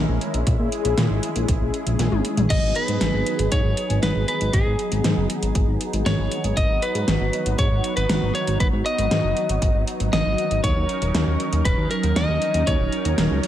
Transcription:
Already playing: analog synth pad G#3 C#4 E4 A#4
0.09 analog synth bass A#1
0.21 closed hi-hat
0.34 analog synth bass A#1, closed hi-hat
0.46 analog synth bass A#1, analog synth pad G#4, kick, closed hi-hat
0.60 analog synth bass A#2
0.72 closed hi-hat
0.85 analog synth bass A#1, closed hi-hat
0.98 analog synth bass A#2, snare, closed hi-hat
1.10 analog synth bass G#1
1.23 closed hi-hat
1.36 analog synth bass A#1, closed hi-hat
1.48 analog synth bass A#1, kick, closed hi-hat
1.61 analog synth bass A#1
1.74 closed hi-hat
1.87 analog synth bass A#1, closed hi-hat
1.99 analog synth bass A#1, snare, closed hi-hat
2.12 analog synth bass G#1, high tom
2.25 closed hi-hat
2.37 analog synth bass A#1, closed hi-hat, mid tom
2.50 analog synth bass G#1, analog synth pad F#3 B3 D#4, lead electric guitar D#5, kick, closed hi-hat, crash
2.63 analog synth bass G#1
2.75 lead electric guitar B4, closed hi-hat
2.88 analog synth bass G#2, closed hi-hat
3.01 analog synth bass G#1, snare, closed hi-hat
3.14 analog synth bass G#1
3.26 closed hi-hat
3.39 analog synth bass G#1, closed hi-hat
3.52 analog synth bass G#2, lead electric guitar C#5, kick, closed hi-hat
3.65 analog synth bass G#1
3.77 closed hi-hat
3.90 analog synth bass G#1, closed hi-hat
4.03 analog synth bass G#1, lead electric guitar B4, snare, closed hi-hat
4.15 analog synth bass G#1
4.28 lead electric guitar B4, closed hi-hat
4.41 analog synth bass G#1, closed hi-hat
4.53 analog synth bass G#1, lead electric guitar G#4, kick, closed hi-hat
4.66 analog synth bass G#2
4.79 closed hi-hat
4.92 analog synth bass G#1, closed hi-hat
5.04 analog synth bass G#2, snare, closed hi-hat
5.17 analog synth bass F#1
5.30 closed hi-hat
5.42 analog synth bass G#1, closed hi-hat
5.55 analog synth bass G#1, kick, closed hi-hat
5.68 analog synth bass G#1
5.81 closed hi-hat
5.93 analog synth bass G#1, closed hi-hat
6.06 analog synth bass G#1, lead electric guitar C#5, snare, closed hi-hat
6.19 analog synth bass G#1
6.31 closed hi-hat
6.44 analog synth bass G#1, closed hi-hat
6.57 analog synth bass G#1, analog synth pad F#4, lead electric guitar D#5, kick, closed hi-hat
6.70 analog synth bass G#1
6.82 lead electric guitar B4, closed hi-hat
6.95 analog synth bass G#2, closed hi-hat
7.08 analog synth bass G#1, snare, closed hi-hat
7.20 analog synth bass G#1
7.33 closed hi-hat
7.46 analog synth bass G#1, closed hi-hat
7.58 analog synth bass G#2, lead electric guitar C#5, kick, closed hi-hat
7.71 analog synth bass G#1
7.84 closed hi-hat
7.97 analog synth bass G#1, lead electric guitar B4, closed hi-hat
8.09 analog synth bass G#1, snare, closed hi-hat
8.22 analog synth bass G#1
8.35 lead electric guitar C#5, closed hi-hat
8.47 analog synth bass G#1, closed hi-hat
8.60 analog synth bass G#1, lead electric guitar B4, kick, closed hi-hat
8.73 analog synth bass G#2
8.86 lead electric guitar D#5, closed hi-hat
8.98 analog synth bass G#1, closed hi-hat
9.11 analog synth bass G#2, snare, closed hi-hat
9.24 analog synth bass F#1
9.37 closed hi-hat
9.49 analog synth bass G#1, closed hi-hat
9.62 analog synth bass G#1, kick, closed hi-hat
9.75 analog synth bass G#1
9.88 closed hi-hat
10.00 analog synth bass G#1, closed hi-hat
10.13 analog synth bass G#1, lead electric guitar D#5, snare, closed hi-hat
10.26 analog synth bass G#1
10.38 closed hi-hat
10.51 analog synth bass G#1, closed hi-hat
10.64 analog synth bass D#2, analog synth pad C#4 D#4 A#4, lead electric guitar C#5, kick, closed hi-hat
10.76 analog synth bass D#2
10.89 closed hi-hat
11.02 analog synth bass D#1, closed hi-hat
11.14 analog synth bass D#2, snare, closed hi-hat
11.27 analog synth bass D#2
11.40 closed hi-hat
11.53 analog synth bass D#2, closed hi-hat
11.65 analog synth bass D#1, lead electric guitar B4, kick, closed hi-hat
11.78 analog synth bass D#2
11.91 lead electric guitar A#4, closed hi-hat
12.03 analog synth bass D#2, closed hi-hat
12.16 analog synth bass D#2, lead electric guitar D#5, snare, closed hi-hat
12.29 analog synth bass D#2
12.42 closed hi-hat
12.54 analog synth bass D#2, closed hi-hat
12.67 analog synth bass D#2, lead electric guitar C#5, kick, closed hi-hat
12.80 analog synth bass D#1
12.92 closed hi-hat
13.05 analog synth bass D#2, closed hi-hat
13.18 analog synth bass D#1, snare, closed hi-hat
13.30 analog synth bass C#2
13.43 closed hi-hat

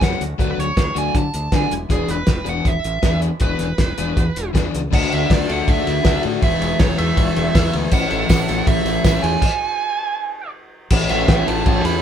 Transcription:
Already playing: clean electric guitar F#2 C#3 E3 A3 C#4 F#4
0.00 fingered electric bass F#2, overdriven electric guitar F#3 A3 C#4 F#4, lead electric guitar F#5, kick, snare, closed hi-hat
0.11 snare
0.19 fingered electric bass D2, clean electric guitar D3 A3 C#4 F#4, closed hi-hat
0.38 fingered electric bass D2, overdriven electric guitar F#3 A3 D4 F#4, lead electric guitar B4, kick, closed hi-hat
0.51 lead electric guitar B4
0.58 fingered electric bass D2, lead electric guitar C#5, closed hi-hat
0.77 fingered electric bass D2, kick, snare, closed hi-hat
0.95 fingered electric bass D2, overdriven electric guitar F#3 A3 D4 F#4, lead electric guitar G#5, closed hi-hat
1.15 fingered electric bass D3, lead electric guitar A5, kick, closed hi-hat
1.34 fingered electric bass D2, closed hi-hat
1.52 fingered electric bass D3, overdriven electric guitar F#3 A3 D4 F#4, lead electric guitar G#5, kick, snare, closed hi-hat
1.69 fingered electric bass E1, clean electric guitar E2 B2 E3 G#3 D4 E4, closed hi-hat
1.89 fingered electric bass E1, overdriven electric guitar E3 B3 D4 G#4, lead electric guitar G#4, kick, closed hi-hat
2.08 fingered electric bass E1, lead electric guitar B4, snare, closed hi-hat
2.27 fingered electric bass E1, kick, snare, closed hi-hat
2.45 fingered electric bass E1, overdriven electric guitar E3 B3 D4 G#4, closed hi-hat
2.49 lead electric guitar F#5
2.65 fingered electric bass E1, lead electric guitar E5, kick, closed hi-hat
2.84 fingered electric bass A1, closed hi-hat
3.02 fingered electric bass E2, overdriven electric guitar E3 B3 D4 G#4, kick, snare, closed hi-hat
3.21 clean electric guitar E2 B2 E3 G#3 D4 E4, closed hi-hat
3.40 fingered electric bass E1, overdriven electric guitar E3 B3 D4 G#4, lead electric guitar B4, kick, closed hi-hat
3.59 fingered electric bass E1, snare, closed hi-hat
3.78 fingered electric bass E1, kick, snare, closed hi-hat
3.98 fingered electric bass E1, overdriven electric guitar E3 B3 D4 G#4, closed hi-hat
4.17 fingered electric bass E2, kick, closed hi-hat
4.36 fingered electric bass E1, closed hi-hat
4.53 fingered electric bass E2, overdriven electric guitar E3 B3 D4 G#4, kick, snare, closed hi-hat
4.75 fingered electric bass C#2, closed hi-hat
4.91 fingered electric bass D2, overdriven electric guitar D3 A3 D4 F#4 A4, clean electric guitar D3 F#3 A3 D4 E4, analog synth pad F#4 E5 D6, lead electric guitar F#5, kick, crash
5.12 fingered electric bass D2, lead electric guitar E5, ride
5.30 fingered electric bass D2, lead electric guitar D5, kick, snare, ride
5.48 fingered electric bass D2, overdriven electric guitar D3 A3 D4 F#4 A4, lead electric guitar F#5, ride
5.68 fingered electric bass D2, lead electric guitar E5, kick, ride
5.87 fingered electric bass D2, snare, ride
6.03 fingered electric bass D2, overdriven electric guitar D3 A3 D4 F#4 A4, kick, snare, ride
6.23 fingered electric bass A2, clean electric guitar D3 F#3 A3 D4 E4, ride
6.41 fingered electric bass E1, clean electric guitar E2 B2 E3 G#3 C#4 E4, overdriven electric guitar E3 G#3 B3 E4, analog synth pad G#4 E5 C#6, lead electric guitar E5, kick, ride
6.61 fingered electric bass E1, ride
6.79 fingered electric bass E1, lead electric guitar C#5, kick, snare, ride
6.97 fingered electric bass E2, overdriven electric guitar E3 G#3 B3 E4, lead electric guitar E5, ride
7.17 fingered electric bass E1, kick, ride
7.36 fingered electric bass E1, snare, ride
7.54 fingered electric bass E2, overdriven electric guitar E3 G#3 B3 E4, kick, snare, ride
7.72 fingered electric bass D2, clean electric guitar E2 B2 E3 G#3 C#4 E4, ride
7.91 fingered electric bass A1, clean electric guitar A2 E3 A3 C#4 E4, overdriven electric guitar A2 E3 A3 C#4 E4, analog synth pad A4 E5, lead electric guitar F#5, kick, crash, tambourine
8.11 fingered electric bass A1, ride
8.29 fingered electric bass A1, kick, snare, ride, tambourine
8.48 fingered electric bass A1, overdriven electric guitar A2 E3 A3 C#4 E4, ride, tambourine
8.67 fingered electric bass A1, lead electric guitar E5, kick, ride, tambourine
8.85 fingered electric bass A1, ride, tambourine
9.04 fingered electric bass A1, overdriven electric guitar A2 E3 A3 C#4 E4, kick, snare, ride, tambourine
9.22 fingered electric bass E2, clean electric guitar E3 A3 C#4 E4, lead electric guitar G#5, ride, tambourine
9.42 kick, crash
10.89 fingered electric bass A1, clean electric guitar A2 E3 B3 C#4 E4, overdriven electric guitar A2 E3 C#4, analog synth pad A4 C#5 B5, kick, crash
10.93 overdriven electric guitar A3 E4
11.09 fingered electric bass A1, clean electric guitar A2 E3 B3 C#4 E4, overdriven electric guitar A2 E3 A3 C#4 E4, lead electric guitar E5, ride
11.28 fingered electric bass A1, overdriven electric guitar A2 E3 A3 C#4 E4, clean electric guitar A2 E3 B3 C#4 E4, kick, snare, ride
11.46 fingered electric bass A1, clean electric guitar A2 E3 B3 C#4 E4, overdriven electric guitar A2 E3 A3 C#4 E4, lead electric guitar A5, ride
11.65 fingered electric bass A1, overdriven electric guitar A2 E3 A3 C#4 E4, clean electric guitar E3 B3 C#4 E4, kick, ride
11.84 fingered electric bass E2, clean electric guitar A2 E3 B3 C#4 E4, overdriven electric guitar A2 E3 A3 C#4 E4, lead electric guitar B5, ride

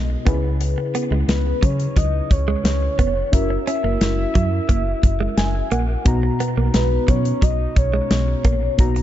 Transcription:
Already playing: fm bass B1, fm electric piano B3 D#4 F#4 A#4, soft synth lead D#5
0.25 fm bass C#2, fm electric piano C#3 C#4 E4 G#4 B4, clean electric guitar B3, kick, closed hi-hat
0.61 closed hi-hat
0.78 muted clean electric guitar stroke
0.95 clean electric guitar B3, closed hi-hat
1.11 fm bass C#2, clean electric guitar G#3
1.28 fm bass C#2, soft synth lead B4, snare, closed hi-hat
1.63 fm bass C#3, clean electric guitar F#3, soft synth lead C#5, kick, closed hi-hat
1.80 closed hi-hat
1.96 fm bass C#2, clean electric guitar F#3, soft synth lead D#5, kick, closed hi-hat
2.31 fm bass C#2, soft synth lead C#5, muted clean electric guitar stroke, kick, closed hi-hat
2.48 clean electric guitar G#3
2.64 fm bass C#2, snare, closed hi-hat
2.99 fm bass F1, clean electric guitar B3, kick, closed hi-hat
3.32 fm bass F#1, fm electric piano C#4 E4 F#4 A#4, soft synth lead E5, kick, closed hi-hat
3.50 muted clean electric guitar stroke
3.67 clean electric guitar C#4, soft synth lead E5, closed hi-hat
3.84 fm bass F#1, clean electric guitar A#3
4.01 fm bass F#1, snare, closed hi-hat
4.35 fm bass F#2, clean electric guitar F#3, kick, closed hi-hat
4.69 fm bass F#1, clean electric guitar A#3, kick, closed hi-hat
5.03 fm bass F#1, muted clean electric guitar stroke, kick, closed hi-hat
5.21 clean electric guitar G#3
5.37 fm bass F#1, fm electric piano G#5, snare, closed hi-hat
5.71 fm bass A#1, clean electric guitar A#3, fm electric piano F#5, closed hi-hat
6.05 fm bass B1, fm electric piano B2 B3 D#4 F#4 A#5, kick, closed hi-hat
6.23 muted clean electric guitar stroke
6.40 clean electric guitar B3, closed hi-hat
6.57 fm bass B1, clean electric guitar A#3
6.74 fm bass B1, soft synth lead B4, snare, closed hi-hat
7.08 fm bass B2, clean electric guitar F#3, soft synth lead C#5, kick, closed hi-hat
7.25 closed hi-hat
7.42 fm bass B1, clean electric guitar F#3, soft synth lead D#5, kick, closed hi-hat
7.76 fm bass B1, soft synth lead C#5, muted clean electric guitar stroke, kick, closed hi-hat
7.94 clean electric guitar G#3
8.11 fm bass B1, snare, closed hi-hat
8.44 fm bass A#1, clean electric guitar A#3, kick, closed hi-hat
8.78 fm bass B1, fm electric piano B2 B3 D#4 F#4 A#5, kick, closed hi-hat
8.96 muted clean electric guitar stroke, closed hi-hat

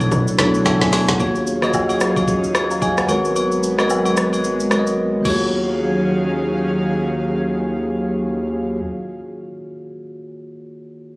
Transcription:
Already playing: log drum bass B2, tine electric piano B2 F#3 D4 E4 A4 C#5, analog synth pad A3 B3 D4
0.00 kick, high agogo, shaker
0.12 log drum bass B2, kick, shaker
0.28 shaker
0.38 log drum bass B1, tine electric piano B2 F#3 D4 E4 A4 C#5, cross-stick, snare, high agogo, shaker
0.54 shaker
0.65 log drum bass C#2, tine electric piano E5 A5, kick, snare, high agogo, low woodblock, shaker
0.81 log drum bass D2, tine electric piano D5 G#5, snare, shaker
0.92 snare, open hi-hat, high agogo, shaker
1.08 log drum bass B1, tine electric piano C#5 F#5, snare, shaker
1.19 analog synth bass D#2, tine electric piano D#3 A#3 F4 F#4 G#4 C#5, analog synth pad D#3 F#3 C#4 G#4 F5, kick, high agogo, shaker
1.35 shaker
1.47 shaker
1.62 tine electric piano D#3 A#3 F4 F#4 G#4 D#5, cross-stick, high agogo, shaker
1.73 kick, low woodblock, shaker
1.89 high agogo, shaker
2.00 cross-stick, shaker
2.16 kick, high agogo, shaker
2.28 kick, shaker
2.44 shaker
2.55 cross-stick, high agogo, shaker
2.71 tine electric piano F5 A#5, shaker
2.82 tine electric piano D#5 G#5, kick, high agogo, shaker
2.98 tine electric piano C#5 F#5, cross-stick, shaker
3.08 analog synth bass G#1, tine electric piano G#3 F#4 A#4 B4 C#5, analog synth pad G#3 B3, high agogo, shaker
3.25 shaker
3.36 high agogo, shaker
3.52 shaker
3.63 shaker
3.78 tine electric piano G#3 F#4 A#4 B4 D#5, cross-stick, high agogo, shaker
3.90 low woodblock, shaker
4.05 high agogo, shaker
4.17 cross-stick, shaker
4.33 high agogo, shaker
4.44 shaker
4.60 shaker
4.70 tine electric piano G#3 F#4 A#4 B4 C#5, cross-stick, high agogo, shaker
4.79 tine electric piano D#5
4.87 shaker
5.21 tine electric piano D#3 A#3 F4
5.25 analog synth bass D#2, analog synth pad D#3 F#3 C#4 G#4 F5, tine electric piano F#4 G#4, kick, crash, high agogo
5.30 tine electric piano C#5

